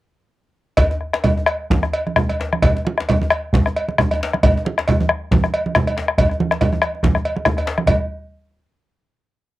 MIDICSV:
0, 0, Header, 1, 4, 480
1, 0, Start_track
1, 0, Tempo, 462250
1, 808, Time_signature, 4, 2, 24, 8
1, 3203, Tempo, 447427
1, 5603, Tempo, 427046
1, 8003, Tempo, 403226
1, 10547, End_track
2, 0, Start_track
2, 0, Title_t, "Bombo"
2, 804, Note_on_c, 9, 37, 23
2, 804, Note_on_c, 9, 43, 76
2, 908, Note_off_c, 9, 37, 0
2, 908, Note_off_c, 9, 43, 0
2, 1045, Note_on_c, 9, 37, 25
2, 1149, Note_off_c, 9, 37, 0
2, 1178, Note_on_c, 9, 37, 61
2, 1282, Note_off_c, 9, 37, 0
2, 1520, Note_on_c, 9, 37, 82
2, 1624, Note_off_c, 9, 37, 0
2, 1769, Note_on_c, 9, 43, 79
2, 1872, Note_off_c, 9, 43, 0
2, 1900, Note_on_c, 9, 37, 60
2, 2004, Note_off_c, 9, 37, 0
2, 2145, Note_on_c, 9, 37, 26
2, 2243, Note_off_c, 9, 37, 0
2, 2243, Note_on_c, 9, 37, 86
2, 2347, Note_off_c, 9, 37, 0
2, 2379, Note_on_c, 9, 37, 27
2, 2483, Note_off_c, 9, 37, 0
2, 2489, Note_on_c, 9, 37, 26
2, 2593, Note_off_c, 9, 37, 0
2, 2622, Note_on_c, 9, 37, 64
2, 2721, Note_off_c, 9, 37, 0
2, 2721, Note_on_c, 9, 37, 27
2, 2721, Note_on_c, 9, 43, 84
2, 2825, Note_off_c, 9, 37, 0
2, 2825, Note_off_c, 9, 43, 0
2, 2958, Note_on_c, 9, 37, 26
2, 3062, Note_off_c, 9, 37, 0
2, 3089, Note_on_c, 9, 37, 63
2, 3192, Note_off_c, 9, 37, 0
2, 3438, Note_on_c, 9, 37, 91
2, 3545, Note_off_c, 9, 37, 0
2, 3678, Note_on_c, 9, 43, 90
2, 3785, Note_off_c, 9, 43, 0
2, 3819, Note_on_c, 9, 37, 64
2, 3926, Note_off_c, 9, 37, 0
2, 4063, Note_on_c, 9, 37, 25
2, 4168, Note_off_c, 9, 37, 0
2, 4168, Note_on_c, 9, 37, 86
2, 4275, Note_off_c, 9, 37, 0
2, 4302, Note_on_c, 9, 37, 27
2, 4409, Note_off_c, 9, 37, 0
2, 4410, Note_on_c, 9, 37, 26
2, 4517, Note_off_c, 9, 37, 0
2, 4544, Note_on_c, 9, 37, 66
2, 4647, Note_off_c, 9, 37, 0
2, 4647, Note_on_c, 9, 37, 26
2, 4647, Note_on_c, 9, 43, 83
2, 4754, Note_off_c, 9, 37, 0
2, 4754, Note_off_c, 9, 43, 0
2, 4884, Note_on_c, 9, 37, 25
2, 4992, Note_off_c, 9, 37, 0
2, 5019, Note_on_c, 9, 37, 67
2, 5127, Note_off_c, 9, 37, 0
2, 5355, Note_on_c, 9, 37, 84
2, 5462, Note_off_c, 9, 37, 0
2, 5593, Note_on_c, 9, 43, 88
2, 5705, Note_off_c, 9, 43, 0
2, 5732, Note_on_c, 9, 37, 65
2, 5844, Note_off_c, 9, 37, 0
2, 6083, Note_on_c, 9, 37, 87
2, 6196, Note_off_c, 9, 37, 0
2, 6222, Note_on_c, 9, 37, 29
2, 6329, Note_off_c, 9, 37, 0
2, 6329, Note_on_c, 9, 37, 29
2, 6441, Note_off_c, 9, 37, 0
2, 6458, Note_on_c, 9, 37, 76
2, 6566, Note_on_c, 9, 43, 90
2, 6570, Note_off_c, 9, 37, 0
2, 6678, Note_off_c, 9, 43, 0
2, 6697, Note_on_c, 9, 37, 30
2, 6809, Note_off_c, 9, 37, 0
2, 6940, Note_on_c, 9, 37, 73
2, 7052, Note_off_c, 9, 37, 0
2, 7182, Note_on_c, 9, 37, 28
2, 7283, Note_off_c, 9, 37, 0
2, 7283, Note_on_c, 9, 37, 90
2, 7396, Note_off_c, 9, 37, 0
2, 7521, Note_on_c, 9, 37, 28
2, 7521, Note_on_c, 9, 43, 86
2, 7634, Note_off_c, 9, 37, 0
2, 7634, Note_off_c, 9, 43, 0
2, 7656, Note_on_c, 9, 37, 61
2, 7769, Note_off_c, 9, 37, 0
2, 7891, Note_on_c, 9, 37, 25
2, 7997, Note_off_c, 9, 37, 0
2, 7997, Note_on_c, 9, 37, 87
2, 8116, Note_off_c, 9, 37, 0
2, 8135, Note_on_c, 9, 37, 26
2, 8244, Note_off_c, 9, 37, 0
2, 8244, Note_on_c, 9, 37, 25
2, 8363, Note_off_c, 9, 37, 0
2, 8383, Note_on_c, 9, 37, 65
2, 8487, Note_on_c, 9, 43, 68
2, 8502, Note_off_c, 9, 37, 0
2, 8606, Note_off_c, 9, 43, 0
2, 10547, End_track
3, 0, Start_track
3, 0, Title_t, "Djembe"
3, 810, Note_on_c, 9, 64, 68
3, 913, Note_off_c, 9, 64, 0
3, 944, Note_on_c, 9, 63, 51
3, 1048, Note_off_c, 9, 63, 0
3, 1183, Note_on_c, 9, 62, 52
3, 1287, Note_off_c, 9, 62, 0
3, 1291, Note_on_c, 9, 64, 67
3, 1395, Note_off_c, 9, 64, 0
3, 1426, Note_on_c, 9, 63, 49
3, 1530, Note_off_c, 9, 63, 0
3, 1781, Note_on_c, 9, 62, 66
3, 1781, Note_on_c, 9, 64, 68
3, 1885, Note_off_c, 9, 62, 0
3, 1885, Note_off_c, 9, 64, 0
3, 1906, Note_on_c, 9, 62, 19
3, 1906, Note_on_c, 9, 63, 50
3, 2010, Note_off_c, 9, 62, 0
3, 2010, Note_off_c, 9, 63, 0
3, 2151, Note_on_c, 9, 62, 21
3, 2254, Note_off_c, 9, 62, 0
3, 2255, Note_on_c, 9, 64, 60
3, 2359, Note_off_c, 9, 64, 0
3, 2389, Note_on_c, 9, 62, 20
3, 2389, Note_on_c, 9, 63, 52
3, 2493, Note_off_c, 9, 62, 0
3, 2493, Note_off_c, 9, 63, 0
3, 2498, Note_on_c, 9, 62, 66
3, 2602, Note_off_c, 9, 62, 0
3, 2738, Note_on_c, 9, 64, 68
3, 2842, Note_off_c, 9, 64, 0
3, 2871, Note_on_c, 9, 63, 51
3, 2974, Note_off_c, 9, 63, 0
3, 3117, Note_on_c, 9, 62, 55
3, 3214, Note_on_c, 9, 64, 71
3, 3221, Note_off_c, 9, 62, 0
3, 3321, Note_off_c, 9, 64, 0
3, 3355, Note_on_c, 9, 63, 52
3, 3462, Note_off_c, 9, 63, 0
3, 3701, Note_on_c, 9, 62, 67
3, 3701, Note_on_c, 9, 64, 70
3, 3809, Note_off_c, 9, 62, 0
3, 3809, Note_off_c, 9, 64, 0
3, 3834, Note_on_c, 9, 62, 22
3, 3834, Note_on_c, 9, 63, 56
3, 3941, Note_off_c, 9, 62, 0
3, 3941, Note_off_c, 9, 63, 0
3, 4084, Note_on_c, 9, 62, 23
3, 4187, Note_on_c, 9, 64, 73
3, 4191, Note_off_c, 9, 62, 0
3, 4294, Note_off_c, 9, 64, 0
3, 4329, Note_on_c, 9, 62, 24
3, 4329, Note_on_c, 9, 63, 60
3, 4432, Note_off_c, 9, 62, 0
3, 4432, Note_on_c, 9, 62, 77
3, 4436, Note_off_c, 9, 63, 0
3, 4539, Note_off_c, 9, 62, 0
3, 4666, Note_on_c, 9, 64, 77
3, 4774, Note_off_c, 9, 64, 0
3, 4800, Note_on_c, 9, 63, 55
3, 4908, Note_off_c, 9, 63, 0
3, 5029, Note_on_c, 9, 62, 56
3, 5134, Note_on_c, 9, 64, 70
3, 5137, Note_off_c, 9, 62, 0
3, 5242, Note_off_c, 9, 64, 0
3, 5262, Note_on_c, 9, 63, 55
3, 5369, Note_off_c, 9, 63, 0
3, 5598, Note_on_c, 9, 62, 68
3, 5598, Note_on_c, 9, 64, 69
3, 5710, Note_off_c, 9, 62, 0
3, 5710, Note_off_c, 9, 64, 0
3, 5738, Note_on_c, 9, 62, 21
3, 5738, Note_on_c, 9, 63, 49
3, 5851, Note_off_c, 9, 62, 0
3, 5851, Note_off_c, 9, 63, 0
3, 5982, Note_on_c, 9, 62, 23
3, 6086, Note_on_c, 9, 64, 65
3, 6095, Note_off_c, 9, 62, 0
3, 6199, Note_off_c, 9, 64, 0
3, 6224, Note_on_c, 9, 62, 22
3, 6224, Note_on_c, 9, 63, 51
3, 6336, Note_off_c, 9, 62, 0
3, 6336, Note_off_c, 9, 63, 0
3, 6338, Note_on_c, 9, 62, 66
3, 6451, Note_off_c, 9, 62, 0
3, 6581, Note_on_c, 9, 64, 66
3, 6694, Note_off_c, 9, 64, 0
3, 6717, Note_on_c, 9, 63, 48
3, 6830, Note_off_c, 9, 63, 0
3, 6951, Note_on_c, 9, 62, 50
3, 7054, Note_on_c, 9, 64, 61
3, 7063, Note_off_c, 9, 62, 0
3, 7166, Note_off_c, 9, 64, 0
3, 7188, Note_on_c, 9, 63, 51
3, 7300, Note_off_c, 9, 63, 0
3, 7429, Note_on_c, 9, 62, 20
3, 7533, Note_off_c, 9, 62, 0
3, 7533, Note_on_c, 9, 62, 68
3, 7533, Note_on_c, 9, 64, 64
3, 7646, Note_off_c, 9, 62, 0
3, 7646, Note_off_c, 9, 64, 0
3, 7669, Note_on_c, 9, 63, 52
3, 7781, Note_off_c, 9, 63, 0
3, 8003, Note_on_c, 9, 64, 65
3, 8122, Note_off_c, 9, 64, 0
3, 8145, Note_on_c, 9, 63, 55
3, 8258, Note_on_c, 9, 62, 74
3, 8264, Note_off_c, 9, 63, 0
3, 8377, Note_off_c, 9, 62, 0
3, 8505, Note_on_c, 9, 64, 71
3, 8624, Note_off_c, 9, 64, 0
3, 10547, End_track
4, 0, Start_track
4, 0, Title_t, "Drums"
4, 801, Note_on_c, 9, 56, 63
4, 807, Note_on_c, 9, 64, 59
4, 905, Note_off_c, 9, 56, 0
4, 910, Note_off_c, 9, 64, 0
4, 1284, Note_on_c, 9, 56, 47
4, 1289, Note_on_c, 9, 63, 21
4, 1289, Note_on_c, 9, 64, 64
4, 1388, Note_off_c, 9, 56, 0
4, 1393, Note_off_c, 9, 63, 0
4, 1393, Note_off_c, 9, 64, 0
4, 1529, Note_on_c, 9, 56, 46
4, 1632, Note_off_c, 9, 56, 0
4, 1775, Note_on_c, 9, 63, 67
4, 1775, Note_on_c, 9, 64, 68
4, 1879, Note_off_c, 9, 63, 0
4, 1879, Note_off_c, 9, 64, 0
4, 2009, Note_on_c, 9, 56, 48
4, 2113, Note_off_c, 9, 56, 0
4, 2146, Note_on_c, 9, 63, 48
4, 2245, Note_off_c, 9, 63, 0
4, 2245, Note_on_c, 9, 63, 21
4, 2245, Note_on_c, 9, 64, 70
4, 2349, Note_off_c, 9, 63, 0
4, 2349, Note_off_c, 9, 64, 0
4, 2382, Note_on_c, 9, 56, 45
4, 2387, Note_on_c, 9, 63, 21
4, 2486, Note_off_c, 9, 56, 0
4, 2491, Note_off_c, 9, 63, 0
4, 2624, Note_on_c, 9, 63, 55
4, 2724, Note_on_c, 9, 56, 58
4, 2727, Note_off_c, 9, 63, 0
4, 2729, Note_on_c, 9, 64, 71
4, 2828, Note_off_c, 9, 56, 0
4, 2833, Note_off_c, 9, 64, 0
4, 2974, Note_on_c, 9, 63, 69
4, 3078, Note_off_c, 9, 63, 0
4, 3203, Note_on_c, 9, 56, 47
4, 3212, Note_on_c, 9, 63, 22
4, 3212, Note_on_c, 9, 64, 71
4, 3310, Note_off_c, 9, 56, 0
4, 3320, Note_off_c, 9, 63, 0
4, 3320, Note_off_c, 9, 64, 0
4, 3342, Note_on_c, 9, 63, 54
4, 3446, Note_on_c, 9, 56, 44
4, 3450, Note_off_c, 9, 63, 0
4, 3451, Note_on_c, 9, 63, 22
4, 3554, Note_off_c, 9, 56, 0
4, 3558, Note_off_c, 9, 63, 0
4, 3689, Note_on_c, 9, 63, 71
4, 3689, Note_on_c, 9, 64, 73
4, 3796, Note_off_c, 9, 63, 0
4, 3796, Note_off_c, 9, 64, 0
4, 3932, Note_on_c, 9, 56, 46
4, 4040, Note_off_c, 9, 56, 0
4, 4061, Note_on_c, 9, 63, 53
4, 4169, Note_off_c, 9, 63, 0
4, 4170, Note_on_c, 9, 63, 22
4, 4170, Note_on_c, 9, 64, 72
4, 4278, Note_off_c, 9, 63, 0
4, 4278, Note_off_c, 9, 64, 0
4, 4306, Note_on_c, 9, 56, 45
4, 4309, Note_on_c, 9, 63, 23
4, 4413, Note_off_c, 9, 56, 0
4, 4416, Note_off_c, 9, 63, 0
4, 4551, Note_on_c, 9, 63, 59
4, 4649, Note_on_c, 9, 56, 64
4, 4652, Note_on_c, 9, 64, 69
4, 4658, Note_off_c, 9, 63, 0
4, 4756, Note_off_c, 9, 56, 0
4, 4759, Note_off_c, 9, 64, 0
4, 4896, Note_on_c, 9, 63, 69
4, 5003, Note_off_c, 9, 63, 0
4, 5124, Note_on_c, 9, 56, 49
4, 5135, Note_on_c, 9, 63, 23
4, 5135, Note_on_c, 9, 64, 73
4, 5231, Note_off_c, 9, 56, 0
4, 5242, Note_off_c, 9, 63, 0
4, 5242, Note_off_c, 9, 64, 0
4, 5263, Note_on_c, 9, 63, 59
4, 5370, Note_off_c, 9, 63, 0
4, 5372, Note_on_c, 9, 63, 22
4, 5479, Note_off_c, 9, 63, 0
4, 5605, Note_on_c, 9, 63, 72
4, 5605, Note_on_c, 9, 64, 69
4, 5717, Note_off_c, 9, 63, 0
4, 5717, Note_off_c, 9, 64, 0
4, 5844, Note_on_c, 9, 56, 49
4, 5956, Note_off_c, 9, 56, 0
4, 5982, Note_on_c, 9, 63, 52
4, 6092, Note_off_c, 9, 63, 0
4, 6092, Note_on_c, 9, 63, 23
4, 6092, Note_on_c, 9, 64, 72
4, 6205, Note_off_c, 9, 63, 0
4, 6205, Note_off_c, 9, 64, 0
4, 6224, Note_on_c, 9, 56, 46
4, 6233, Note_on_c, 9, 63, 22
4, 6336, Note_off_c, 9, 56, 0
4, 6346, Note_off_c, 9, 63, 0
4, 6572, Note_on_c, 9, 56, 60
4, 6579, Note_on_c, 9, 63, 23
4, 6579, Note_on_c, 9, 64, 70
4, 6684, Note_off_c, 9, 56, 0
4, 6691, Note_off_c, 9, 63, 0
4, 6691, Note_off_c, 9, 64, 0
4, 6817, Note_on_c, 9, 63, 72
4, 6929, Note_off_c, 9, 63, 0
4, 7050, Note_on_c, 9, 56, 44
4, 7055, Note_on_c, 9, 63, 23
4, 7055, Note_on_c, 9, 64, 72
4, 7162, Note_off_c, 9, 56, 0
4, 7167, Note_off_c, 9, 63, 0
4, 7167, Note_off_c, 9, 64, 0
4, 7178, Note_on_c, 9, 63, 52
4, 7291, Note_off_c, 9, 63, 0
4, 7292, Note_on_c, 9, 56, 42
4, 7404, Note_off_c, 9, 56, 0
4, 7529, Note_on_c, 9, 63, 67
4, 7529, Note_on_c, 9, 64, 69
4, 7642, Note_off_c, 9, 63, 0
4, 7642, Note_off_c, 9, 64, 0
4, 7662, Note_on_c, 9, 63, 21
4, 7772, Note_on_c, 9, 56, 44
4, 7774, Note_off_c, 9, 63, 0
4, 7884, Note_off_c, 9, 56, 0
4, 7899, Note_on_c, 9, 63, 51
4, 8003, Note_on_c, 9, 64, 71
4, 8012, Note_off_c, 9, 63, 0
4, 8122, Note_off_c, 9, 64, 0
4, 8150, Note_on_c, 9, 56, 39
4, 8269, Note_off_c, 9, 56, 0
4, 8387, Note_on_c, 9, 63, 58
4, 8496, Note_on_c, 9, 64, 73
4, 8499, Note_on_c, 9, 56, 70
4, 8506, Note_off_c, 9, 63, 0
4, 8615, Note_off_c, 9, 64, 0
4, 8618, Note_off_c, 9, 56, 0
4, 10547, End_track
0, 0, End_of_file